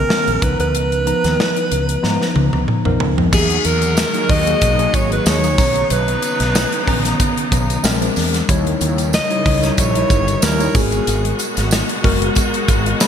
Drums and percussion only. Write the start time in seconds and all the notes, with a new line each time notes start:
0.10 snare
0.27 closed hi-hat
0.42 kick, closed hi-hat
0.60 closed hi-hat
0.75 closed hi-hat
0.92 closed hi-hat
1.07 closed hi-hat
1.24 snare, closed hi-hat
1.40 snare
1.56 closed hi-hat
1.72 closed hi-hat
1.89 closed hi-hat
2.04 snare
2.22 snare
2.36 high tom
2.53 high tom
2.68 mid tom
2.85 mid tom
3.00 floor tom
3.18 floor tom
3.33 kick, crash, tambourine
3.50 closed hi-hat
3.64 closed hi-hat, tambourine
3.82 closed hi-hat, tambourine
3.97 snare, closed hi-hat, tambourine
4.14 closed hi-hat
4.29 kick, open hi-hat
4.46 closed hi-hat, tambourine
4.61 kick, closed hi-hat, tambourine
4.79 closed hi-hat
4.94 kick, closed hi-hat, tambourine
5.12 closed hi-hat
5.26 snare, closed hi-hat, tambourine
5.44 closed hi-hat, tambourine
5.58 kick, snare, open hi-hat, tambourine
5.76 closed hi-hat
5.90 closed hi-hat, tambourine
6.08 closed hi-hat
6.22 closed hi-hat, tambourine
6.40 snare, closed hi-hat
6.55 snare, closed hi-hat, tambourine
6.72 closed hi-hat
6.88 kick, open hi-hat
7.05 snare, closed hi-hat, tambourine
7.20 kick, closed hi-hat, tambourine
7.37 closed hi-hat
7.52 kick, closed hi-hat, tambourine
7.70 closed hi-hat, tambourine
7.84 snare, closed hi-hat, tambourine
8.02 closed hi-hat, tambourine
8.16 snare, open hi-hat, tambourine
8.34 snare, closed hi-hat, tambourine
8.49 kick, closed hi-hat, tambourine
8.67 closed hi-hat
8.81 closed hi-hat, tambourine
8.98 closed hi-hat, tambourine
9.13 snare, closed hi-hat, tambourine
9.30 closed hi-hat
9.46 kick, open hi-hat
9.62 snare, closed hi-hat, tambourine
9.77 kick, closed hi-hat, tambourine
9.95 closed hi-hat
10.10 kick, closed hi-hat, tambourine
10.28 closed hi-hat, tambourine
10.42 snare, closed hi-hat, tambourine
10.60 closed hi-hat, tambourine
10.75 kick, open hi-hat, tambourine
10.92 closed hi-hat, tambourine
11.07 closed hi-hat, tambourine
11.25 closed hi-hat
11.39 closed hi-hat, tambourine
11.57 snare, closed hi-hat, tambourine
11.71 snare, closed hi-hat, tambourine
11.89 closed hi-hat
12.04 kick, open hi-hat
12.22 closed hi-hat
12.35 kick, closed hi-hat, tambourine
12.54 closed hi-hat
12.68 kick, closed hi-hat, tambourine
12.86 closed hi-hat
13.00 snare, closed hi-hat, tambourine